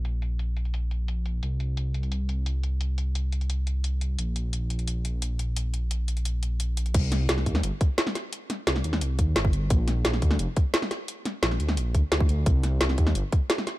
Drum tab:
CC |----------------|----------------|----------------|----------------|
HH |x-x-x-xxx-x-x-x-|x-x-x-xxx-x-x-x-|x-x-x-xxx-x-x-x-|x-x-x-xxx-x-x-x-|
SD |----------------|----------------|----------------|----------------|
BD |----------------|----------------|----------------|----------------|

CC |----------------|x---------------|----------------|----------------|
HH |x-x-x-xxx-x-x-xx|x-x-x-x-x-x-x-x-|x-x-x-x-x-x-x-x-|x-x-x-x-x-x-x-x-|
SD |----------------|--o-oo-o----ooo-|--o-oo-o----o---|--o-oo-o----ooo-|
BD |----------------|o-----o---o-----|----------o--o--|o-----o---o-----|

CC |----------------|----------------|
HH |x-x-x-x-x-x-x-x-|x-x-x-x-x-x-x-x-|
SD |--o-oo-o----o---|--o-oo-o----ooo-|
BD |----------o--o--|o-----o---o-----|